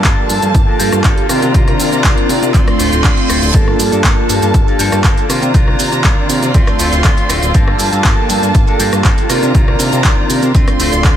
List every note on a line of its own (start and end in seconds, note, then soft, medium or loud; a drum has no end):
0.00 1.24 A#3 medium
0.00 1.28 A#3 medium
0.00 1.25 D4 medium
0.00 1.25 F4 medium
0.00 3.51 F4 medium
0.00 1.25 G4 medium
0.00 1.25 A4 loud
0.00 1.28 A5 loud
0.04 0.15 G1 medium
0.04 0.79 F3 medium
0.04 0.68 A#3 loud
0.04 0.68 D4 loud
0.04 0.66 A4 loud
0.04 kick loud
0.04 clap loud
0.04 closed hi-hat medium
0.04 cabasa soft
0.29 0.40 G2 medium
0.29 open hi-hat medium
0.29 cabasa medium
0.42 0.53 G2 medium
0.42 closed hi-hat medium
0.42 cabasa soft
0.55 0.65 G1 loud
0.55 kick loud
0.55 closed hi-hat medium
0.55 cabasa soft
0.67 0.79 A#3 medium
0.67 0.79 D4 medium
0.67 0.79 A4 medium
0.79 0.90 G2 loud
0.79 1.03 F3 medium
0.79 1.03 A#3 medium
0.79 1.04 D4 medium
0.79 1.04 A4 medium
0.79 open hi-hat loud
0.79 cabasa medium
0.92 1.03 G2 medium
0.92 cross-stick medium
0.92 closed hi-hat medium
0.92 cabasa soft
1.04 1.15 G1 medium
1.04 1.29 F3 medium
1.04 1.29 A#3 medium
1.04 1.29 D4 medium
1.04 1.30 A4 loud
1.04 kick loud
1.04 clap loud
1.04 closed hi-hat medium
1.04 cabasa soft
1.18 closed hi-hat soft
1.28 1.40 C3 medium
1.28 1.42 D#3 medium
1.28 2.50 D#3 medium
1.28 1.43 A#3 medium
1.28 2.49 C4 medium
1.28 2.49 D4 medium
1.28 1.42 D4 medium
1.28 2.50 F4 medium
1.28 1.41 F4 medium
1.28 2.50 A#4 loud
1.28 3.52 D5 medium
1.28 2.53 A#5 medium
1.28 cross-stick medium
1.28 open hi-hat medium
1.28 cabasa medium
1.42 1.53 C3 loud
1.42 1.53 A#3 medium
1.42 1.54 D4 medium
1.42 1.54 F4 medium
1.42 closed hi-hat medium
1.42 cabasa soft
1.54 1.76 C2 loud
1.54 1.92 D#3 medium
1.54 1.93 A#3 medium
1.54 1.92 D4 medium
1.54 1.91 F4 loud
1.54 kick loud
1.54 closed hi-hat medium
1.54 cabasa soft
1.68 cross-stick medium
1.68 closed hi-hat soft
1.80 1.90 C3 medium
1.80 open hi-hat loud
1.80 cabasa medium
1.92 2.03 C3 medium
1.92 2.03 A#3 soft
1.92 2.04 D4 medium
1.92 2.04 F4 medium
1.92 closed hi-hat medium
1.92 cabasa soft
2.04 2.15 C2 medium
2.04 2.42 D#3 loud
2.04 2.42 A#3 medium
2.04 2.41 D4 loud
2.04 2.40 F4 loud
2.04 kick loud
2.04 clap loud
2.04 closed hi-hat medium
2.04 cabasa soft
2.18 closed hi-hat soft
2.29 2.40 C3 medium
2.29 open hi-hat medium
2.29 cabasa medium
2.42 2.52 C3 medium
2.42 2.54 A#3 soft
2.42 2.54 D4 medium
2.42 2.54 F4 medium
2.42 closed hi-hat medium
2.42 cabasa soft
2.53 2.65 D2 loud
2.53 3.49 A3 medium
2.53 2.67 A3 medium
2.53 2.68 C4 medium
2.53 2.65 F4 medium
2.53 3.54 C6 medium
2.53 kick loud
2.53 clap medium
2.53 closed hi-hat medium
2.53 reverse cymbal medium
2.53 cabasa soft
2.67 2.77 D1 soft
2.67 2.79 C4 medium
2.67 2.79 F4 medium
2.67 cross-stick medium
2.67 closed hi-hat soft
2.79 2.90 D1 loud
2.79 2.92 A3 medium
2.79 2.92 C4 medium
2.79 2.90 F4 medium
2.79 open hi-hat loud
2.79 cabasa medium
2.91 3.02 D1 loud
2.91 3.03 C4 soft
2.91 3.04 F4 medium
2.91 closed hi-hat medium
2.91 cabasa soft
3.04 3.15 D2 medium
3.04 3.27 A3 medium
3.04 3.28 C4 medium
3.04 3.29 F4 medium
3.04 kick loud
3.04 clap loud
3.04 closed hi-hat medium
3.04 cabasa soft
3.17 closed hi-hat soft
3.29 3.40 D1 loud
3.29 3.42 A3 medium
3.29 3.43 C4 medium
3.29 3.41 F4 medium
3.29 cross-stick medium
3.29 open hi-hat medium
3.29 cabasa medium
3.42 3.52 D1 medium
3.42 3.54 C4 medium
3.42 3.54 F4 medium
3.42 closed hi-hat medium
3.42 cabasa soft
3.53 3.75 G1 loud
3.53 3.92 F3 medium
3.53 5.24 A#3 medium
3.53 3.92 A#3 medium
3.53 5.28 A#3 medium
3.53 5.24 D4 medium
3.53 3.91 D4 medium
3.53 5.25 F4 medium
3.53 11.17 F4 medium
3.53 5.25 G4 medium
3.53 5.25 A4 loud
3.53 3.90 A4 loud
3.53 5.28 A5 medium
3.53 kick loud
3.53 closed hi-hat medium
3.53 cabasa soft
3.53 maracas soft
3.68 cross-stick medium
3.79 3.90 G2 medium
3.79 open hi-hat loud
3.79 cabasa medium
3.79 maracas medium
3.92 4.03 G2 medium
3.92 4.03 A#3 medium
3.92 4.03 D4 medium
3.92 4.04 A4 medium
3.92 closed hi-hat medium
3.92 cabasa soft
3.92 maracas soft
4.04 4.15 G1 medium
4.04 4.42 F3 medium
4.04 4.42 A#3 loud
4.04 4.42 D4 medium
4.04 4.40 A4 loud
4.04 kick loud
4.04 clap loud
4.04 closed hi-hat medium
4.04 cabasa soft
4.04 maracas soft
4.29 4.40 G2 medium
4.29 open hi-hat medium
4.29 cabasa medium
4.29 maracas loud
4.42 4.52 G2 medium
4.42 4.68 A#3 soft
4.42 4.67 D4 soft
4.42 4.66 A4 medium
4.42 closed hi-hat medium
4.42 cabasa soft
4.42 maracas soft
4.54 4.65 G1 loud
4.54 kick loud
4.54 closed hi-hat medium
4.54 cabasa soft
4.54 maracas soft
4.67 4.78 A#3 soft
4.67 4.79 D4 medium
4.67 4.79 A4 medium
4.67 maracas soft
4.79 4.90 G2 loud
4.79 5.03 F3 medium
4.79 5.03 A#3 medium
4.79 5.04 D4 medium
4.79 5.04 A4 medium
4.79 open hi-hat loud
4.79 cabasa medium
4.79 maracas medium
4.92 5.03 G2 loud
4.92 cross-stick medium
4.92 closed hi-hat medium
4.92 cabasa soft
4.92 maracas soft
5.04 5.15 G1 loud
5.04 5.29 F3 medium
5.04 5.28 A#3 medium
5.04 5.29 D4 medium
5.04 5.30 A4 loud
5.04 kick loud
5.04 clap loud
5.04 closed hi-hat medium
5.04 cabasa soft
5.04 maracas medium
5.18 closed hi-hat soft
5.18 maracas soft
5.28 5.40 C3 medium
5.28 5.42 D#3 medium
5.28 6.50 D#3 medium
5.28 5.43 A#3 medium
5.28 6.49 C4 loud
5.28 6.49 D4 medium
5.28 5.42 D4 medium
5.28 6.50 F4 medium
5.28 5.41 F4 medium
5.28 6.50 A#4 loud
5.28 7.52 D5 medium
5.28 6.53 A#5 medium
5.28 cross-stick medium
5.28 open hi-hat medium
5.28 cabasa medium
5.28 maracas medium
5.42 5.52 C3 loud
5.42 5.53 A#3 soft
5.42 5.54 D4 medium
5.42 5.54 F4 medium
5.42 closed hi-hat medium
5.42 cabasa soft
5.42 maracas soft
5.54 5.75 C2 loud
5.54 5.92 D#3 medium
5.54 5.93 A#3 medium
5.54 5.92 D4 loud
5.54 5.91 F4 loud
5.54 kick loud
5.54 closed hi-hat medium
5.54 cabasa soft
5.54 maracas medium
5.68 cross-stick medium
5.79 5.90 C3 medium
5.79 open hi-hat loud
5.79 cabasa medium
5.79 maracas loud
5.92 6.02 C3 medium
5.92 6.04 A#3 medium
5.92 6.04 D4 medium
5.92 6.04 F4 medium
5.92 closed hi-hat medium
5.92 cabasa soft
5.92 maracas soft
6.04 6.15 C2 medium
6.04 6.42 D#3 loud
6.04 6.43 A#3 loud
6.04 6.42 D4 medium
6.04 6.41 F4 loud
6.04 kick loud
6.04 clap loud
6.04 closed hi-hat medium
6.04 cabasa soft
6.04 maracas medium
6.29 6.40 C3 medium
6.29 open hi-hat loud
6.29 cabasa medium
6.29 maracas medium
6.42 6.52 C3 medium
6.42 6.54 A#3 soft
6.42 6.55 D4 medium
6.42 6.54 F4 medium
6.42 closed hi-hat medium
6.42 cabasa soft
6.42 maracas soft
6.54 6.65 D2 loud
6.54 7.49 A3 medium
6.54 6.67 A3 medium
6.54 7.50 C4 medium
6.54 6.68 C4 loud
6.54 7.50 D4 medium
6.54 7.50 F4 medium
6.54 6.66 F4 loud
6.54 7.50 A4 medium
6.54 7.53 C6 medium
6.54 kick loud
6.54 closed hi-hat medium
6.54 cabasa soft
6.54 maracas medium
6.67 6.77 D1 soft
6.67 6.79 C4 medium
6.67 6.79 F4 medium
6.67 cross-stick medium
6.67 maracas soft
6.79 6.90 D1 loud
6.79 7.03 A3 medium
6.79 7.04 C4 medium
6.79 7.04 F4 medium
6.79 open hi-hat loud
6.79 cabasa medium
6.79 maracas medium
6.92 7.03 D1 loud
6.92 closed hi-hat medium
6.92 cabasa soft
6.92 maracas soft
7.04 7.15 D2 medium
7.04 7.28 A3 medium
7.04 7.29 C4 loud
7.04 7.30 F4 loud
7.04 kick loud
7.04 clap loud
7.04 closed hi-hat medium
7.04 cabasa soft
7.04 maracas medium
7.17 closed hi-hat soft
7.17 maracas soft
7.29 7.40 D1 medium
7.29 7.42 A3 medium
7.29 7.43 C4 medium
7.29 7.41 F4 medium
7.29 cross-stick medium
7.29 open hi-hat loud
7.29 cabasa medium
7.29 maracas medium
7.42 7.52 D1 loud
7.42 7.55 C4 soft
7.42 7.54 F4 medium
7.42 closed hi-hat medium
7.42 cabasa soft
7.42 maracas soft
7.54 7.76 G1 loud
7.54 7.92 F3 medium
7.54 9.24 A#3 medium
7.54 9.28 A#3 medium
7.54 7.93 A#3 loud
7.54 9.25 D4 medium
7.54 7.92 D4 medium
7.54 9.25 F4 medium
7.54 9.25 G4 medium
7.54 9.25 A4 loud
7.54 7.91 A4 loud
7.54 9.28 A5 loud
7.54 kick loud
7.54 closed hi-hat medium
7.54 cabasa soft
7.54 maracas medium
7.68 cross-stick medium
7.79 7.90 G2 medium
7.79 open hi-hat loud
7.79 cabasa medium
7.79 maracas medium
7.92 8.03 G2 medium
7.92 8.04 A#3 medium
7.92 8.04 D4 medium
7.92 8.04 A4 medium
7.92 closed hi-hat medium
7.92 cabasa soft
7.92 maracas soft
8.04 8.15 G1 medium
8.04 8.43 F3 medium
8.04 8.43 A#3 medium
8.04 8.42 D4 loud
8.04 8.41 A4 loud
8.04 kick loud
8.04 clap loud
8.04 closed hi-hat medium
8.04 cabasa soft
8.04 maracas medium
8.29 8.40 G2 medium
8.29 open hi-hat loud
8.29 cabasa medium
8.29 maracas loud
8.42 8.52 G2 medium
8.42 8.68 A#3 soft
8.42 8.67 D4 medium
8.42 8.66 A4 medium
8.42 closed hi-hat medium
8.42 cabasa soft
8.42 maracas soft
8.55 8.65 G1 loud
8.55 kick loud
8.55 closed hi-hat medium
8.55 cabasa soft
8.55 maracas medium
8.67 8.79 A#3 medium
8.67 8.80 D4 medium
8.67 8.80 A4 medium
8.67 maracas soft
8.79 8.90 G2 loud
8.79 8.93 F3 medium
8.79 8.93 A#3 medium
8.79 8.92 D4 medium
8.79 8.91 A4 medium
8.79 open hi-hat loud
8.79 cabasa medium
8.79 maracas medium
8.92 9.03 G2 loud
8.92 9.04 A#3 soft
8.92 9.04 D4 medium
8.92 9.05 A4 medium
8.92 cross-stick medium
8.92 closed hi-hat medium
8.92 cabasa soft
8.92 maracas soft
9.04 9.15 G1 medium
9.04 9.29 A#3 medium
9.04 9.30 D4 medium
9.04 9.30 A4 medium
9.04 kick loud
9.04 clap loud
9.04 closed hi-hat medium
9.04 cabasa soft
9.04 maracas medium
9.18 closed hi-hat soft
9.18 maracas soft
9.29 9.41 C3 medium
9.29 10.50 D#3 medium
9.29 9.43 D#3 medium
9.29 9.43 A#3 medium
9.29 10.49 C4 medium
9.29 10.50 D4 medium
9.29 9.43 D4 medium
9.29 10.50 F4 medium
9.29 9.41 F4 medium
9.29 10.50 A#4 loud
9.29 10.53 D5 medium
9.29 10.53 A#5 medium
9.29 cross-stick medium
9.29 open hi-hat loud
9.29 cabasa medium
9.29 maracas medium
9.43 9.53 C3 loud
9.43 9.54 A#3 medium
9.43 9.54 D4 medium
9.43 9.55 F4 medium
9.43 closed hi-hat medium
9.43 cabasa soft
9.43 maracas soft
9.55 9.76 C2 loud
9.55 9.93 D#3 medium
9.55 9.93 A#3 medium
9.55 9.92 D4 medium
9.55 9.91 F4 loud
9.55 kick loud
9.55 closed hi-hat medium
9.55 cabasa soft
9.55 maracas medium
9.68 cross-stick medium
9.79 9.90 C3 medium
9.79 open hi-hat loud
9.79 cabasa medium
9.79 maracas loud
9.92 10.03 C3 medium
9.92 10.04 A#3 medium
9.92 10.04 D4 medium
9.92 10.04 F4 medium
9.92 closed hi-hat soft
9.92 cabasa soft
9.92 maracas soft
10.04 10.15 C2 medium
10.04 10.43 A#3 loud
10.04 10.42 D4 loud
10.04 10.41 F4 loud
10.04 kick loud
10.04 clap loud
10.04 closed hi-hat medium
10.04 cabasa soft
10.04 maracas medium
10.30 10.40 C3 medium
10.30 open hi-hat loud
10.30 cabasa medium
10.30 maracas loud
10.42 10.53 C3 medium
10.42 10.54 A#3 soft
10.42 10.55 D4 medium
10.42 10.55 F4 medium
10.42 closed hi-hat medium
10.42 cabasa soft
10.42 maracas soft
10.54 10.65 D2 loud
10.54 10.68 A3 medium
10.54 10.68 C4 medium
10.54 11.17 F4 medium
10.54 10.66 F4 loud
10.54 11.17 A4 medium
10.54 11.17 D5 medium
10.54 11.17 C6 medium
10.54 kick loud
10.54 closed hi-hat medium
10.54 cabasa soft
10.54 maracas medium
10.67 10.77 D1 soft
10.67 10.79 C4 medium
10.67 10.79 F4 medium
10.67 cross-stick medium
10.67 closed hi-hat soft
10.67 maracas soft
10.80 10.90 D1 loud
10.80 10.93 A3 medium
10.80 10.93 C4 medium
10.80 10.91 F4 medium
10.80 open hi-hat loud
10.80 cabasa medium
10.80 maracas medium
10.92 11.03 D1 medium
10.92 11.04 C4 soft
10.92 11.04 F4 medium
10.92 closed hi-hat soft
10.92 cabasa soft
10.92 maracas soft
11.04 11.15 D2 medium
11.04 11.17 A3 medium
11.04 11.17 C4 medium
11.04 11.17 F4 loud
11.04 kick loud
11.04 clap loud
11.04 closed hi-hat medium
11.04 cabasa soft
11.04 maracas soft